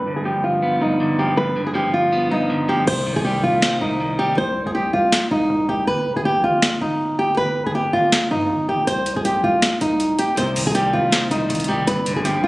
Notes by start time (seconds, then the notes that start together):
Already playing: G2 B4
0.07 D3
0.16 G#4
0.25 F3 G4
0.44 F4
0.63 B3
0.81 G2 D#4
1.00 D3
1.19 F3 G4
1.37 G2 B4
1.56 D3
1.67 G#4
1.74 F3 G4
1.94 F4
2.12 B3
2.31 G2 D#4
2.50 D3
2.69 F3 G4
2.87 C2 C3 C5, crash
3.06 D#3
3.16 C2 G#4
3.25 G3 G4
3.35 B1
3.43 C2 F4
3.62 C5, snare
3.81 C2 C3 D#4
4.00 D#3
4.19 G3 G4
4.37 C2 C5
4.66 C2 G#4
4.75 G4
4.93 C2 F4
5.12 snare
5.31 C2 D#4
5.50 C2
5.69 C2 G4
5.87 G1 B4
6.06 F1
6.16 G1 G#4
6.25 G4
6.35 B1
6.44 G1 F4
6.62 snare
6.81 G1 D#4
7.19 G4
7.37 G1 B4
7.66 G1 G#4
7.75 G4
7.93 G1 F4
8.12 snare
8.31 G2 D#4
8.50 G1
8.69 G1 G4
8.87 C2 C5, closed hi-hat
9.06 closed hi-hat
9.16 C2 G#4
9.25 G4, closed hi-hat
9.35 B1
9.44 C2 F4
9.62 snare, closed hi-hat
9.81 C2 D#4, closed hi-hat
10.00 closed hi-hat
10.19 G4, closed hi-hat
10.37 C2 C3 C5, closed hi-hat
10.56 D#3, open hi-hat
10.66 C2 G#4
10.75 G3 G4, closed hi-hat
10.93 C2 F4
11.12 C5, snare, closed hi-hat
11.31 C2 C3 D#4, closed hi-hat
11.49 C2 D#3, closed hi-hat
11.55 closed hi-hat
11.60 closed hi-hat
11.64 closed hi-hat
11.68 C2 G3 G4
11.87 G1 G2 B4, closed hi-hat
12.06 F1 D3, closed hi-hat
12.16 G1 G#4
12.25 F3 G4, closed hi-hat
12.35 B1
12.44 G1 F4